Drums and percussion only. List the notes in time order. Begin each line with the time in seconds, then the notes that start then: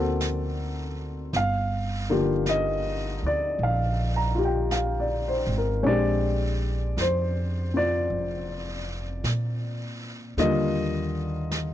0.21 brush sweep, snare, hi-hat pedal
1.33 brush sweep, snare
2.46 brush sweep, snare, hi-hat pedal
3.58 brush sweep
4.71 brush sweep, snare, hi-hat pedal
5.83 brush sweep
6.97 brush sweep, snare, hi-hat pedal
8.11 brush sweep
9.24 brush sweep, snare, hi-hat pedal
10.38 brush sweep, snare
11.51 brush sweep, snare, hi-hat pedal